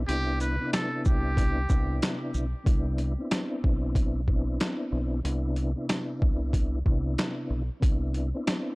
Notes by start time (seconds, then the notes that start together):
0.07 C2 C3 B3 D4 E4 G4, closed hi-hat
0.40 B4, closed hi-hat, shaker
0.59 C3 B3 D4 E4
0.73 A4, snare, closed hi-hat
1.05 C2 G4, kick, shaker
1.37 kick, closed hi-hat
1.68 C2 C3 B3 D4 E4, kick, shaker
2.02 snare, closed hi-hat
2.34 B1, shaker
2.64 C2 C3 B3 D4 E4, kick, closed hi-hat
2.98 closed hi-hat
3.18 B3 C4 D4 E4
3.31 snare, closed hi-hat
3.64 B1, kick
3.95 kick, closed hi-hat
4.28 B3 C4 D4 E4, kick
4.60 snare, closed hi-hat
4.92 B1
5.23 C2 C3 B3 D4 E4, closed hi-hat
5.56 closed hi-hat
5.75 C3 B3 D4 E4
5.89 snare, closed hi-hat
6.22 C2, kick
6.53 kick, closed hi-hat
6.85 C2 C3 B3 D4 E4, kick
7.18 snare, closed hi-hat
7.50 B1
7.80 C2 C3 B3 D4 E4, kick, closed hi-hat
8.14 closed hi-hat
8.34 B3 C4 D4 E4
8.47 snare, closed hi-hat